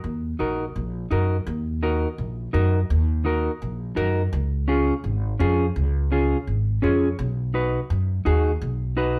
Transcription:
0.04 0.32 D#2 medium
0.39 0.68 A#1 medium
0.39 0.64 D#4 medium
0.39 0.65 F#4 medium
0.39 0.65 A#4 medium
0.76 1.04 A#1 medium
1.11 1.40 F#2 medium
1.11 1.36 D#4 medium
1.11 1.36 F#4 medium
1.11 1.36 A#4 medium
1.46 2.04 D#2 loud
1.83 2.07 D#4 medium
1.83 2.07 F#4 medium
1.83 2.08 A#4 medium
2.18 2.47 A#1 medium
2.53 2.83 F#2 medium
2.53 2.79 D#4 medium
2.53 2.79 F#4 medium
2.53 2.79 A#4 medium
2.90 3.47 D#2 loud
3.25 3.50 D#4 medium
3.25 3.51 F#4 medium
3.25 3.51 A#4 medium
3.62 3.90 A#1 medium
3.96 4.25 F#2 loud
3.96 4.22 D#4 medium
3.96 4.22 F#4 medium
3.96 4.22 A#4 medium
4.33 4.90 C#2 loud
4.68 4.93 C#4 medium
4.68 4.93 F4 medium
4.68 4.94 G#4 medium
5.04 5.33 G#1 medium
5.39 5.69 F2 loud
5.39 5.65 C#4 medium
5.39 5.65 F4 medium
5.39 5.65 G#4 medium
5.76 6.33 C#2 loud
6.12 6.37 C#4 medium
6.12 6.37 F4 medium
6.12 6.37 G#4 medium
6.47 6.76 G#1 medium
6.82 7.12 F2 medium
6.82 7.08 C#4 medium
6.82 7.08 F4 medium
6.82 7.08 G#4 medium
6.82 7.16 C#5 medium
7.19 7.76 B1 loud
7.54 7.79 D#4 medium
7.54 7.79 F#4 medium
7.54 7.80 B4 medium
7.90 8.19 F#2 loud
8.25 8.55 D#2 loud
8.25 8.51 D#4 medium
8.25 8.51 F#4 medium
8.25 8.51 G#4 loud
8.61 9.19 B1 loud
8.97 9.19 D#4 medium
8.97 9.19 F#4 medium
8.97 9.19 B4 medium

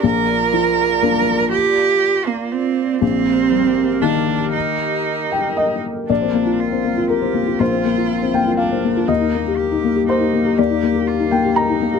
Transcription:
0.00 1.48 A#1 medium
0.00 6.09 A#3 medium
0.00 3.01 F4 medium
0.00 1.49 A#4 medium
0.00 3.03 D5 medium
0.53 1.32 F3 soft
1.02 2.97 A#3 soft
1.02 2.97 D4 medium
1.52 2.28 G4 loud
2.27 2.53 A#3 medium
2.52 3.01 C4 medium
3.01 4.50 A#1 medium
3.01 4.03 C4 loud
3.01 6.10 G4 medium
3.01 6.09 A#4 medium
3.51 4.33 G3 soft
4.01 6.05 D#3 soft
4.01 6.05 A#3 soft
4.01 4.52 D4 medium
4.53 5.80 D#4 medium
5.32 5.56 G5 medium
5.57 6.05 D#5 medium
6.09 7.56 A#1 soft
6.09 9.05 C4 soft
6.09 6.62 D4 soft
6.09 9.05 F4 soft
6.09 11.99 A#4 soft
6.09 7.06 D5 medium
6.21 6.42 C4 soft
6.34 6.54 A#3 soft
6.46 6.87 F4 soft
6.60 7.10 F4 soft
6.72 6.92 C4 soft
6.84 7.05 A#3 soft
6.97 7.37 F4 soft
7.09 7.61 G4 soft
7.09 7.56 A#4 medium
7.22 7.42 C4 soft
7.34 7.55 A#3 soft
7.47 7.67 F4 soft
7.59 9.05 A#1 soft
7.59 8.58 F4 medium
7.59 8.31 C5 medium
7.71 7.92 C4 soft
7.85 8.05 A#3 soft
7.97 8.37 F4 soft
8.22 8.42 C4 soft
8.34 8.54 A#3 soft
8.34 8.57 G5 medium
8.47 8.87 F4 soft
8.57 9.09 D4 soft
8.57 9.04 F5 medium
8.72 8.92 C4 soft
8.84 9.04 A#3 soft
8.97 9.09 F4 soft
9.08 10.53 D#2 soft
9.08 11.99 A#3 soft
9.08 9.58 D#4 soft
9.08 11.99 G4 soft
9.08 10.04 D#5 medium
9.21 9.41 D#4 soft
9.34 9.54 A#3 soft
9.47 9.87 G4 soft
9.56 10.07 G4 soft
9.71 9.91 D#4 soft
9.84 10.04 A#3 soft
9.96 10.35 G4 soft
10.08 10.59 D#4 soft
10.08 10.55 C5 medium
10.20 10.40 D#4 soft
10.33 10.53 A#3 soft
10.45 10.65 G4 soft
10.58 11.99 D#2 soft
10.58 11.09 G4 medium
10.58 11.28 D5 medium
10.70 10.90 D#4 soft
10.83 11.03 A#3 soft
10.95 11.35 G4 soft
11.07 11.57 F4 medium
11.20 11.39 D#4 soft
11.31 11.52 A#3 soft
11.31 11.55 G5 medium
11.44 11.84 G4 soft
11.56 11.99 D#4 soft
11.56 11.99 A#5 medium
11.69 11.89 D#4 soft
11.82 11.99 A#3 soft
11.94 11.99 G4 soft

